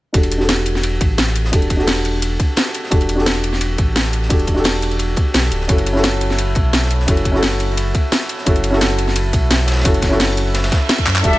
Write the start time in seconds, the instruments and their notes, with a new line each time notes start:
0.13 sub bass E1, felt piano D4 F#4 G4 A4, kick, closed hi-hat, ride
0.23 closed hi-hat, ride
0.32 closed hi-hat, ride
0.38 felt piano D4 F#4 G4, snare
0.43 felt piano A4
0.49 snare, closed hi-hat, ride
0.66 closed hi-hat, ride
0.75 snare
0.83 closed hi-hat, ride
1.01 sub bass A1, kick, closed hi-hat, ride
1.18 snare, closed hi-hat, ride
1.27 snare
1.35 closed hi-hat, ride
1.45 snare
1.51 sub bass E1, felt piano D4 F#4 G4 A4, kick, closed hi-hat, ride
1.62 closed hi-hat
1.70 kick, closed hi-hat, ride
1.77 felt piano D4 F#4 G4, snare
1.82 felt piano A4
1.87 snare, closed hi-hat, open hi-hat
2.05 closed hi-hat, ride
2.22 closed hi-hat, ride
2.39 kick, closed hi-hat, ride
2.57 snare, closed hi-hat, ride
2.66 snare
2.74 closed hi-hat, ride
2.84 snare
2.90 sub bass E1, felt piano D4 F#4 G4 A4, kick, closed hi-hat, ride
3.01 closed hi-hat, ride
3.09 closed hi-hat, ride
3.15 felt piano D4 F#4 G4, snare
3.21 felt piano A4
3.26 snare, closed hi-hat, ride
3.44 closed hi-hat, ride
3.53 snare
3.61 closed hi-hat, ride
3.78 sub bass A1, kick, closed hi-hat, ride
3.96 snare, closed hi-hat, ride
4.05 snare
4.13 closed hi-hat, ride
4.22 snare
4.29 sub bass E1, felt piano D4 F#4 G4 A4, kick, closed hi-hat, ride
4.40 closed hi-hat
4.47 kick, closed hi-hat, ride
4.54 felt piano D4 F#4 G4, snare
4.60 felt piano A4
4.64 snare, closed hi-hat, open hi-hat
4.82 closed hi-hat, ride
4.92 closed hi-hat
4.99 closed hi-hat, ride
5.16 kick, closed hi-hat, ride
5.34 sub bass B1, snare, closed hi-hat, ride
5.43 snare
5.51 sub bass D1, closed hi-hat, ride
5.61 snare
5.68 sub bass F#1, felt piano C#4 E4 F#4 A4, kick, closed hi-hat, ride
5.78 closed hi-hat, ride
5.86 closed hi-hat, ride
5.93 felt piano C#4 E4 F#4, snare
5.98 felt piano A4
6.03 snare, closed hi-hat, ride
6.21 closed hi-hat, ride
6.30 snare
6.38 closed hi-hat, ride
6.55 sub bass B1, kick, closed hi-hat, ride
6.73 snare, closed hi-hat, ride
6.83 snare
6.91 closed hi-hat, ride
7.00 snare
7.06 sub bass F#1, felt piano C#4 E4 F#4 A4, kick, closed hi-hat, ride
7.17 closed hi-hat
7.25 kick, closed hi-hat, ride
7.32 felt piano C#4 E4 F#4, snare
7.37 felt piano A4
7.43 snare, closed hi-hat, open hi-hat
7.60 closed hi-hat, ride
7.77 closed hi-hat, ride
7.95 kick, closed hi-hat, ride
8.12 snare, closed hi-hat, ride
8.21 snare
8.29 closed hi-hat, ride
8.38 snare
8.45 sub bass F#1, felt piano C#4 E4 F#4 A4, kick, closed hi-hat, ride
8.55 closed hi-hat, ride
8.64 closed hi-hat, ride
8.70 felt piano C#4 E4 F#4, snare
8.76 felt piano A4
8.81 snare, closed hi-hat, ride
8.99 closed hi-hat, ride
9.08 snare
9.16 closed hi-hat, ride
9.33 sub bass B1, kick, closed hi-hat, ride
9.51 snare, closed hi-hat, ride
9.60 snare
9.67 snare, closed hi-hat, ride
9.72 snare, ride
9.77 snare, ride
9.81 sub bass F#1, felt piano C#4 E4, kick, snare, closed hi-hat, ride
9.85 felt piano F#4 A4, ride
9.94 closed hi-hat
10.02 kick, snare, closed hi-hat, ride
10.09 felt piano C#4 E4 F#4, snare
10.14 felt piano A4
10.20 snare, closed hi-hat, open hi-hat
10.37 closed hi-hat, ride
10.54 snare, closed hi-hat, ride, reverse cymbal
10.63 snare, ride
10.72 kick, snare, closed hi-hat, ride
10.89 snare, closed hi-hat, ride
10.98 kick, closed hi-hat
11.06 sub bass F#2, snare, clap, closed hi-hat, ride
11.15 snare, clap, ride
11.23 sub bass E1, string section G3 D4 A4 E5, felt piano D4 F#4 G4 A4, flute E5, kick, closed hi-hat, ride
11.33 closed hi-hat, ride